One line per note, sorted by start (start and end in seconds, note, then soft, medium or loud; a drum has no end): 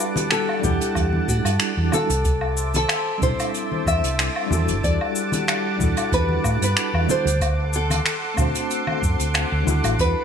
0.00 0.58 G3 medium
0.00 2.22 G3 medium
0.00 0.59 D4 medium
0.00 0.60 E4 medium
0.00 0.61 F#4 medium
0.00 0.62 A4 medium
0.00 0.31 B4 medium
0.00 2.22 F#5 medium
0.00 2.22 A5 medium
0.00 2.21 D6 medium
0.00 cabasa loud
0.16 closed hi-hat medium
0.16 high conga loud
0.16 cabasa medium
0.30 0.65 A4 medium
0.30 finger snap loud
0.30 closed hi-hat medium
0.30 cabasa soft
0.49 low woodblock medium
0.60 1.87 G3 medium
0.60 1.88 D4 medium
0.60 1.89 E4 medium
0.60 low conga medium
0.64 0.77 E2 medium
0.64 1.28 G4 loud
0.64 1.91 A4 medium
0.64 1.90 F#5 medium
0.64 kick loud
0.64 cabasa medium
0.81 closed hi-hat medium
0.81 cabasa medium
0.95 1.21 E2 loud
0.95 kick loud
0.95 closed hi-hat medium
0.95 cabasa soft
0.95 low woodblock medium
1.13 high conga medium
1.28 1.41 A2 medium
1.28 1.95 F#4 medium
1.28 kick medium
1.28 cabasa medium
1.45 1.56 G2 medium
1.45 closed hi-hat medium
1.45 cabasa medium
1.45 low woodblock medium
1.60 finger snap loud
1.60 closed hi-hat medium
1.60 cabasa medium
1.77 1.89 E2 medium
1.91 2.08 G3 medium
1.91 2.08 D4 medium
1.91 2.09 E4 medium
1.91 2.09 F#4 medium
1.91 2.75 A4 medium
1.91 2.10 A4 medium
1.91 high conga medium
1.91 cabasa loud
1.91 low woodblock medium
2.10 2.84 C2 medium
2.10 closed hi-hat medium
2.10 cabasa medium
2.25 4.81 C5 medium
2.25 4.81 E5 medium
2.25 7.37 A5 medium
2.25 10.24 D6 medium
2.25 kick loud
2.25 closed hi-hat medium
2.25 cabasa medium
2.41 low woodblock medium
2.57 cabasa medium
2.74 3.22 A4 loud
2.74 closed hi-hat medium
2.74 high conga medium
2.74 cabasa medium
2.89 finger snap loud
2.89 closed hi-hat medium
2.89 cabasa medium
2.89 low woodblock medium
3.18 4.45 G3 medium
3.18 4.46 C4 medium
3.18 4.47 D4 medium
3.22 3.35 C2 medium
3.22 4.48 E4 medium
3.22 4.49 A4 medium
3.22 3.87 C5 loud
3.22 kick loud
3.22 low conga medium
3.22 cabasa medium
3.39 closed hi-hat medium
3.39 cabasa medium
3.39 low woodblock medium
3.54 closed hi-hat medium
3.54 cabasa soft
3.72 high conga medium
3.86 3.99 E2 loud
3.86 4.84 E5 loud
3.86 kick loud
3.86 cabasa medium
3.86 low woodblock medium
4.03 4.27 C2 medium
4.03 closed hi-hat medium
4.03 cabasa medium
4.19 finger snap loud
4.19 closed hi-hat medium
4.19 cabasa medium
4.36 low woodblock medium
4.47 4.70 E2 medium
4.47 5.74 G3 medium
4.47 5.75 D4 medium
4.47 5.76 E4 medium
4.51 5.77 F#4 medium
4.51 5.78 A4 medium
4.51 high conga medium
4.51 cabasa medium
4.68 4.79 G1 medium
4.68 closed hi-hat medium
4.68 cabasa medium
4.83 4.96 E2 loud
4.83 7.38 G3 medium
4.83 6.13 D5 loud
4.83 7.39 F#5 medium
4.83 kick loud
4.83 closed hi-hat medium
4.83 cabasa medium
5.01 low woodblock medium
5.16 cabasa medium
5.32 closed hi-hat medium
5.32 high conga medium
5.32 cabasa medium
5.48 finger snap medium
5.48 closed hi-hat medium
5.48 cabasa medium
5.48 low woodblock medium
5.76 5.93 E2 medium
5.76 7.04 G3 medium
5.76 7.05 D4 medium
5.76 7.05 E4 medium
5.76 kick loud
5.76 low conga medium
5.81 7.06 F#4 medium
5.81 7.07 A4 medium
5.81 cabasa medium
5.97 closed hi-hat medium
5.97 cabasa medium
5.97 low woodblock medium
6.12 6.37 E2 loud
6.12 6.63 B4 medium
6.12 kick loud
6.12 closed hi-hat medium
6.12 cabasa soft
6.29 high conga medium
6.44 6.57 A2 medium
6.44 kick medium
6.44 cabasa medium
6.44 low woodblock medium
6.61 6.73 G2 medium
6.61 7.10 B4 loud
6.61 closed hi-hat medium
6.61 cabasa medium
6.77 finger snap loud
6.77 closed hi-hat medium
6.77 cabasa medium
6.94 7.05 E2 medium
6.94 low woodblock medium
7.07 7.24 G3 medium
7.07 7.24 D4 medium
7.07 7.25 E4 medium
7.07 7.25 F#4 medium
7.07 7.26 A4 medium
7.07 high conga medium
7.07 cabasa medium
7.11 7.75 C5 loud
7.25 7.99 D2 medium
7.25 closed hi-hat medium
7.25 cabasa medium
7.41 9.97 A4 medium
7.41 10.24 F#5 medium
7.41 9.97 C6 medium
7.41 kick loud
7.41 closed hi-hat medium
7.41 cabasa soft
7.41 low woodblock medium
7.73 8.67 A4 medium
7.73 cabasa medium
7.90 closed hi-hat medium
7.90 high conga medium
7.90 cabasa medium
7.90 low woodblock medium
8.05 finger snap loud
8.05 closed hi-hat medium
8.05 cabasa soft
8.34 8.51 D2 medium
8.34 9.62 A3 medium
8.34 9.62 C4 medium
8.34 9.63 D4 medium
8.34 kick loud
8.34 cabasa medium
8.34 low woodblock medium
8.38 9.64 F#4 medium
8.38 9.65 C5 medium
8.38 low conga medium
8.55 closed hi-hat medium
8.55 cabasa medium
8.70 closed hi-hat medium
8.70 cabasa soft
8.87 high conga medium
8.87 low woodblock medium
9.02 9.15 F#2 loud
9.02 kick loud
9.02 cabasa medium
9.19 9.44 D2 medium
9.19 closed hi-hat medium
9.19 cabasa medium
9.34 finger snap loud
9.34 closed hi-hat medium
9.34 cabasa soft
9.34 low woodblock medium
9.52 9.63 D2 loud
9.63 9.80 D2 loud
9.63 10.24 G3 medium
9.63 10.24 D4 medium
9.63 10.24 E4 medium
9.63 high conga medium
9.68 10.24 F#4 medium
9.68 10.24 A4 medium
9.68 cabasa medium
9.84 9.95 A1 medium
9.84 closed hi-hat medium
9.84 cabasa medium
9.84 low woodblock medium
9.99 10.12 E2 loud
9.99 10.24 G3 medium
9.99 10.24 B4 loud
9.99 10.24 A5 medium
9.99 kick loud
9.99 closed hi-hat medium
9.99 cabasa soft